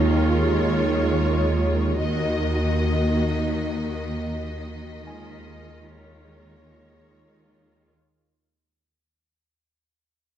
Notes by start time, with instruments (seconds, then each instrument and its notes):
Already playing: double bass section D#2, synth drone D#2, cello section D#3, viola section G#3 F4, violin section C#5
2.01 synth drone D#2, double bass section D#2, cello section D#3, viola section A#3 F#4, violin section D#5 A#6
2.80 violin section B6
5.07 viola section G#3 F4, grand piano G#5
5.87 violin section C#5
6.52 violin section A#6